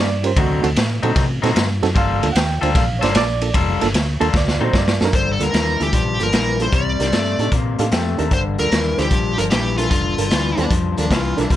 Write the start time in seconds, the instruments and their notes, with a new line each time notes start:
Already playing: fingered electric bass G2
0.00 reed electric piano D5
0.24 reed electric piano C#4 F4 G4 A#4 C5, ride
0.36 fingered electric bass D2, clean electric guitar D3 F#3 C4 D#4, reed electric piano A3 F#4, kick, ride
0.63 fingered electric bass D2, reed electric piano C4 D#4 F#4 A4, ride
0.76 fingered electric bass A2, snare, ride
1.03 fingered electric bass A#2, clean electric guitar D3 F#3 C4 D#4, reed electric piano C4 D#4 F#4 A4, ride
1.16 fingered electric bass C3, kick, snare, ride
1.42 fingered electric bass A#2, clean electric guitar D3 F#3 C4 D#4, reed electric piano C4 D#4 F#4 A4, snare, ride
1.56 fingered electric bass G2, snare, ride
1.83 fingered electric bass F#2, reed electric piano C4 D#4 F#4 A4, snare, ride
1.95 fingered electric bass G1, clean electric guitar G3 A#3 F4 A4, reed electric piano F5, kick, ride
2.23 fingered electric bass D2, reed electric piano A#3 D4 F4 A4, ride
2.32 fingered electric bass D#2, reed electric piano F#5, ride
2.37 reed electric piano G5, snare
2.61 fingered electric bass D2, clean electric guitar G3 A#3 F4 A4, reed electric piano A#3 D4 F4 C5, ride
2.75 fingered electric bass A#1, reed electric piano F5, kick, snare, ride
2.99 fingered electric bass G1, clean electric guitar G3 A#3 F4 A4, reed electric piano A#3 D4 C#5, ride
3.03 reed electric piano F4 C5 D5, snare
3.12 fingered electric bass A#1, reed electric piano C#5, snare, ride
3.17 reed electric piano D5
3.41 reed electric piano A#3 D4 F4 A4, ride
3.54 fingered electric bass F1, clean electric guitar G3 A#3 F4 A4, kick, ride
3.81 fingered electric bass G1, reed electric piano A#3 D4 F4 A4, snare, ride
3.94 fingered electric bass D2, snare, ride
4.20 fingered electric bass D#2, clean electric guitar G3 A#3 F4 A4, reed electric piano A#3 D4 F4 A4, ride
4.34 fingered electric bass D2, reed electric piano D5, kick, snare
4.48 snare
4.61 fingered electric bass A#2, clean electric guitar D3 F#3 C4 D#4, reed electric piano C4 D#4 F#4 A4 C5
4.73 fingered electric bass G2, reed electric piano C#5, kick, snare
4.78 reed electric piano D5
4.88 snare
5.01 fingered electric bass F#2, reed electric piano C4 D4 D#4 F#4 A4, snare
5.05 reed electric piano A#4
5.13 fingered electric bass G1, clean electric guitar G2 D3, lead electric guitar C5, kick, closed hi-hat
5.33 lead electric guitar A4
5.40 fingered electric bass D2, clean electric guitar G2 D3, reed electric piano A#3 D4 F4 A4, lead electric guitar A#4, closed hi-hat
5.52 fingered electric bass D#2, clean electric guitar G2 E3, snare, closed hi-hat
5.79 fingered electric bass D2, clean electric guitar G2 E3, reed electric piano A#3 D4 F4 A4, lead electric guitar G4, closed hi-hat
5.92 fingered electric bass A#1, clean electric guitar G2 F3, kick, closed hi-hat
6.19 fingered electric bass G1, clean electric guitar G2 F3, reed electric piano A#3 D4 F4 A4, closed hi-hat
6.23 lead electric guitar A#4
6.32 fingered electric bass A#1, clean electric guitar G2 E3, lead electric guitar A#4, snare, closed hi-hat
6.59 clean electric guitar G2 E3, reed electric piano A#3 D4 F4 A4, lead electric guitar C5, closed hi-hat
6.72 fingered electric bass C2, clean electric guitar C3 G3, lead electric guitar D5, kick, closed hi-hat
6.99 fingered electric bass C2, clean electric guitar C3 G3, reed electric piano D4 D#4 G4 A#4, snare, closed hi-hat
7.12 fingered electric bass G2, clean electric guitar C3 A3, snare, closed hi-hat
7.39 fingered electric bass A2, clean electric guitar C3 A3, reed electric piano D4 D#4 G4 A4, closed hi-hat
7.51 fingered electric bass A#2, clean electric guitar C3 A#3, kick, closed hi-hat
7.78 fingered electric bass A2, clean electric guitar C3 A#3, reed electric piano D4 D#4 G4 A4 F5, closed hi-hat
7.91 fingered electric bass F2, clean electric guitar C3 A3, reed electric piano G5, snare, closed hi-hat
8.18 fingered electric bass D#2, clean electric guitar C3 A3, reed electric piano D4 D#4 G4 A#4 A#5, closed hi-hat
8.31 fingered electric bass G1, clean electric guitar G2 D3, lead electric guitar C5, kick, closed hi-hat
8.58 fingered electric bass D2, clean electric guitar G2 D3, reed electric piano D4 F4 A4 A#4, lead electric guitar A#4, closed hi-hat
8.71 fingered electric bass D#2, clean electric guitar G2 E3, snare, closed hi-hat
8.98 fingered electric bass D2, clean electric guitar G2 E3, reed electric piano D4 F4 A4 C5, lead electric guitar G4, snare, closed hi-hat
9.11 fingered electric bass A#1, clean electric guitar G2 F3, kick, closed hi-hat
9.38 fingered electric bass G1, clean electric guitar G2 F3, reed electric piano D4 F4 A4 A#4, lead electric guitar A#4, closed hi-hat
9.50 fingered electric bass A#1, clean electric guitar G2 E3, lead electric guitar G4, snare, closed hi-hat
9.77 clean electric guitar G2 E3, reed electric piano D4 F4 A4 A#4, lead electric guitar F4, closed hi-hat
9.90 fingered electric bass F1, clean electric guitar G2 D3, lead electric guitar F4, kick, closed hi-hat
10.18 fingered electric bass G1, clean electric guitar G2 D3, reed electric piano D4 F4 A4 A#4, closed hi-hat
10.30 fingered electric bass D2, clean electric guitar G2 E3, snare, closed hi-hat
10.57 fingered electric bass D#2, clean electric guitar G2 E3, reed electric piano D4 F4 A4 C5, harmonica D4, closed hi-hat
10.71 fingered electric bass F2, clean electric guitar G2 F3, kick, closed hi-hat
10.97 fingered electric bass D#2, clean electric guitar G2 F3, reed electric piano D4 F4 A4 A#4, harmonica D4, closed hi-hat
11.10 fingered electric bass C2, clean electric guitar G2 E3, harmonica F4, kick, snare, closed hi-hat
11.37 fingered electric bass B1, clean electric guitar G2 E3, reed electric piano D4 F4 A4 A#4, harmonica D4, snare, closed hi-hat
11.50 fingered electric bass C2, clean electric guitar C3 G3, harmonica F4, kick, closed hi-hat